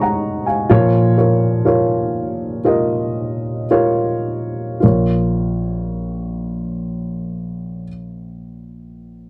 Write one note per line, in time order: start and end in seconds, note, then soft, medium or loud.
0.00 0.66 G#2 medium
0.00 0.66 D#3 medium
0.00 0.72 D#4 medium
0.00 0.72 G#4 medium
0.00 0.71 C#5 medium
0.00 0.71 D#5 medium
0.00 0.45 F#5 soft
0.00 0.72 A#5 soft
0.00 0.71 C#6 soft
0.46 0.91 F5 soft
0.46 0.91 G#5 soft
0.70 4.79 A#2 medium
0.70 4.79 F3 medium
0.70 1.14 F4 medium
0.70 1.15 A#4 medium
0.70 1.15 C#5 medium
1.17 1.63 F4 medium
1.17 1.63 A#4 medium
1.17 1.63 C#5 medium
1.65 2.60 F4 medium
1.65 2.60 A#4 medium
1.65 2.60 C#5 medium
2.64 3.65 F4 medium
2.64 3.65 A#4 medium
2.64 3.65 D#5 medium
3.71 4.77 F4 medium
3.71 4.77 A#4 medium
3.71 4.78 C#5 medium
4.80 7.86 A#1 soft
4.80 7.83 F4 soft
4.80 7.85 A#4 soft
4.86 7.88 C#5 medium